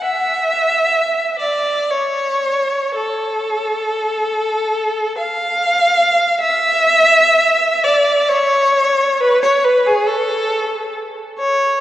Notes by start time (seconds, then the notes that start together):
0.02 E5
1.39 D5
1.91 C#5
2.96 A4
5.18 F5
6.41 E5
7.84 D5
8.29 C#5
9.20 B4
9.43 C#5
9.64 B4
9.86 G#4
10.07 A4
11.39 C#5